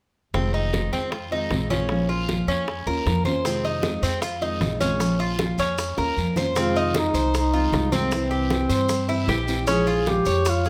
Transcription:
0.34 upright bass F1, nylon-string guitar C3 D#3 G#3 C4 F4, cuban tres C4, high bongo, high conga, long guiro
0.54 cuban tres D#4, high conga
0.73 nylon-string guitar D#3 G#3 C4 F4, high bongo, high conga, short guiro
0.92 upright bass F2, cuban tres C4, high conga, short guiro
1.12 cuban tres F4, muted nylon-string guitar stroke, high bongo, high conga, long guiro
1.31 nylon-string guitar D#3 G#3 C4 F4, cuban tres D#4, high conga
1.50 upright bass A#1, nylon-string guitar D#3 G#3 C4 F4, high bongo, low bongo, high conga, short guiro
1.70 nylon-string guitar D#3 G#3 C4 F4, cuban tres C#4, high conga, short guiro
1.89 nylon-string guitar F3 A#3 C#4 F4, high bongo, high conga, long guiro
2.09 cuban tres F4, high bongo, high conga
2.28 nylon-string guitar F3 A#3 C#4 F4, high bongo, high conga, short guiro
2.47 upright bass F2, cuban tres C#4, high conga, short guiro
2.67 muted nylon-string guitar stroke, high bongo, high conga, long guiro
2.87 upright bass D#2, nylon-string guitar A#3 C#4 F4, cuban tres A#4, high bongo, high conga
3.06 upright bass F2, nylon-string guitar F3 A#3 C#4 F4, high bongo, low bongo, high conga, short guiro
3.25 nylon-string guitar A#3 C#4 F4, cuban tres C5, high bongo, high conga, short guiro
3.45 nylon-string guitar C3 D#3 G#3 C4 F4, cuban tres C4, high bongo, high conga, long guiro, maracas
3.64 cuban tres D#4, high conga, maracas
3.83 nylon-string guitar D#3 G#3 C4 F4, high bongo, high conga, short guiro, maracas
4.02 upright bass F2, cuban tres C4, high conga, short guiro, maracas
4.22 cuban tres F4, muted nylon-string guitar stroke, high bongo, high conga, long guiro, maracas
4.41 nylon-string guitar D#3 G#3 C4 F4, cuban tres D#4, high conga, maracas
4.61 upright bass A#1, nylon-string guitar D#3 G#3 C4 F4, high bongo, low bongo, high conga, short guiro, maracas
4.80 nylon-string guitar D#3 G#3 C4 F4, cuban tres C#4, high conga, short guiro, maracas
4.99 nylon-string guitar F3 A#3 C#4 F4, high bongo, long guiro, maracas
5.19 cuban tres F4, high bongo, high conga, maracas
5.38 nylon-string guitar F3 A#3 C#4 F4, high bongo, high conga, short guiro, maracas
5.58 upright bass F2, cuban tres C#4, high conga, short guiro, maracas
5.78 muted nylon-string guitar stroke, high bongo, high conga, long guiro, maracas
5.97 upright bass D#2, nylon-string guitar A#3 C#4 F4, cuban tres A#4, high bongo, high conga, maracas
6.17 upright bass F2, nylon-string guitar F3 A#3 C#4 F4, high conga, short guiro, maracas
6.36 nylon-string guitar A#3 C#4 F4, cuban tres C5, low bongo, high conga, short guiro, maracas
6.55 nylon-string guitar C3 D#3 G#3 C4 F4, cuban tres C4, duduk F4, high bongo, long guiro, maracas
6.76 cuban tres D#4, high conga, maracas
6.94 nylon-string guitar D#3 G#3 C4 F4, duduk D#4, high bongo, high conga, short guiro, maracas
7.14 upright bass C2, cuban tres C5, high conga, short guiro, maracas
7.34 duduk D#4, muted nylon-string guitar stroke, high bongo, high conga, long guiro, maracas
7.53 nylon-string guitar D#3 G#3 C4 F4, cuban tres F4, high conga, maracas
7.72 upright bass C2, nylon-string guitar D#3 G#3 C4 F4, high bongo, low bongo, high conga, short guiro, maracas
7.92 nylon-string guitar D#3 G#3 C4 F4, cuban tres C4, duduk C4, high conga, short guiro, maracas
8.11 nylon-string guitar C3 E3 G3 C4 E4, high bongo, long guiro, maracas
8.31 cuban tres G4, high bongo, high conga, maracas
8.50 nylon-string guitar E3 G3 C4 E4, high bongo, high conga, short guiro, maracas
8.69 upright bass G2, cuban tres C5, high conga, short guiro, maracas
8.89 muted nylon-string guitar stroke, high bongo, high conga, long guiro, maracas
9.09 nylon-string guitar E3 G3 C4 E4, cuban tres E4, high bongo, high conga, maracas
9.28 upright bass A#1, nylon-string guitar E3 G3 C4 E4, cuban tres G4, high bongo, low bongo, high conga, short guiro, maracas
9.47 nylon-string guitar E3 G3 C4 E4, high bongo, short guiro, maracas
9.67 nylon-string guitar F3 G#3 C#4 F4, cuban tres C#4, duduk G#4, high bongo, high conga, long guiro, maracas
9.86 cuban tres F4, high conga, maracas
10.06 nylon-string guitar F3 G#3 C#4 F4, duduk G4, high bongo, high conga, short guiro, maracas
10.25 upright bass F2, cuban tres C#5, high conga, short guiro, maracas
10.45 duduk F4, muted nylon-string guitar stroke, high bongo, high conga, long guiro, maracas
10.64 nylon-string guitar F4, cuban tres G#4, high conga, maracas

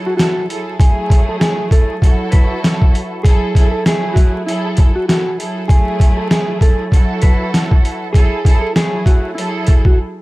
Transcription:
Already playing: string section F#3 E4 G#4 A4
0.06 clean electric guitar F#4
0.17 string section F#3 E4 G#4 A4, clean electric guitar F#4, snare, closed hi-hat
0.49 string section F#3 E4 G#4 A4, closed hi-hat
0.80 string section F#3 A3 E4 G#4, clean electric guitar G#4, kick, closed hi-hat
1.10 kick, closed hi-hat
1.29 clean electric guitar A4
1.40 clean electric guitar G#4, snare, closed hi-hat
1.71 clean electric guitar A4, kick, closed hi-hat
2.02 string section F#3 E4 F#4 A4, kick, closed hi-hat
2.31 clean electric guitar B4, kick, closed hi-hat
2.64 snare, closed hi-hat
2.82 kick
2.95 closed hi-hat
3.23 string section F#3 E4 G#4 A4, clean electric guitar G#4, kick, closed hi-hat
3.55 string section F#3 E4 G#4 A4, kick, closed hi-hat
3.72 clean electric guitar A4
3.85 string section F#3 A3 E4 G#4, clean electric guitar G#4, snare, closed hi-hat
4.13 clean electric guitar F#4, kick, closed hi-hat
4.46 string section F#3 E4 G#4 A4, clean electric guitar E4, closed hi-hat
4.77 kick, closed hi-hat
4.95 clean electric guitar F#4
5.08 string section F#3 E4 G#4 A4, clean electric guitar F#4, snare, closed hi-hat
5.39 string section F#3 E4 G#4 A4, closed hi-hat
5.68 string section F#3 A3 E4 G#4, clean electric guitar G#4, kick, closed hi-hat
6.00 kick, closed hi-hat
6.17 clean electric guitar A4
6.31 clean electric guitar G#4, snare, closed hi-hat
6.61 clean electric guitar A4, kick, closed hi-hat
6.92 string section F#3 E4 F#4 A4, kick, closed hi-hat
7.22 clean electric guitar B4, kick, closed hi-hat
7.54 snare, closed hi-hat
7.71 kick
7.85 closed hi-hat
8.13 string section F#3 E4 G#4 A4, clean electric guitar G#4, kick, closed hi-hat
8.45 string section F#3 E4 G#4 A4, kick, closed hi-hat
8.61 clean electric guitar A4
8.75 string section F#3 A3 E4 G#4, clean electric guitar G#4, snare, closed hi-hat
9.06 clean electric guitar F#4, kick, closed hi-hat
9.35 string section F#3 E4 G#4 A4, clean electric guitar E4, closed hi-hat
9.67 kick, closed hi-hat
9.85 clean electric guitar F#4, kick

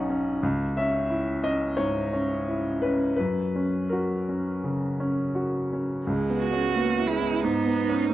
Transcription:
Already playing: upright piano B1 C#4 D#4 F#5
0.10 upright piano C#4
0.43 upright piano C#2
0.77 upright piano C#4 E5
1.10 upright piano E4
1.44 upright piano C#4 D#5
1.77 upright piano G#2 C#5
2.13 upright piano C#4
2.48 upright piano E4
2.82 upright piano C#4 B4
3.16 upright piano F#2 B4
3.56 upright piano C#4
3.89 upright piano F#4 A#4
4.29 upright piano C#4
4.64 upright piano C#3
5.00 upright piano C#4
5.35 upright piano F#4
5.73 upright piano C#4
6.07 upright piano C#2, viola G#3
6.30 upright piano B3
6.39 cello F#4
6.53 upright piano C#4
6.75 viola A#3, upright piano B3
6.98 upright piano E4
7.07 viola G#3, cello E4
7.21 upright piano B3
7.41 upright piano G#2, viola B3, cello D#4
7.66 upright piano B3
7.89 upright piano C#4
8.11 viola A#3

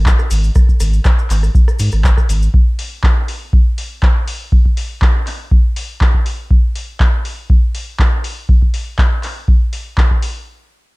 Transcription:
Already playing: sub bass G#1
0.06 kick, clap, cabasa
0.19 cross-stick, cabasa
0.30 sub bass G#1, open hi-hat, cabasa
0.44 cabasa
0.55 kick, cross-stick, cabasa
0.69 kick, cabasa
0.80 sub bass G#1, cross-stick, open hi-hat, cabasa
0.93 cabasa
1.05 kick, cross-stick, clap, cabasa
1.19 cabasa
1.30 sub bass G#1, clap, open hi-hat, cabasa
1.43 cross-stick, cabasa
1.55 kick, cabasa
1.68 cross-stick, cabasa
1.79 sub bass G#2, open hi-hat, cabasa
1.92 sub bass G#1, cross-stick, cabasa
2.04 kick, clap, cabasa
2.17 kick, cross-stick, cabasa
2.29 sub bass G#1, open hi-hat, cabasa
2.42 cabasa
2.54 kick
2.79 open hi-hat
3.04 kick, clap
3.28 open hi-hat
3.53 kick
3.78 open hi-hat
4.03 kick, clap
4.28 open hi-hat
4.52 kick
4.65 kick
4.77 open hi-hat
5.02 kick, clap
5.27 clap, open hi-hat
5.51 kick
5.76 open hi-hat
6.01 kick, clap
6.14 kick
6.26 open hi-hat
6.51 kick
6.75 open hi-hat
7.00 kick, clap
7.25 open hi-hat
7.50 kick
7.75 open hi-hat
7.99 kick, clap
8.24 open hi-hat
8.49 kick
8.62 kick
8.74 open hi-hat
8.99 kick, clap
9.23 clap, open hi-hat
9.48 kick
9.73 open hi-hat
9.98 kick, clap
10.11 kick
10.22 open hi-hat

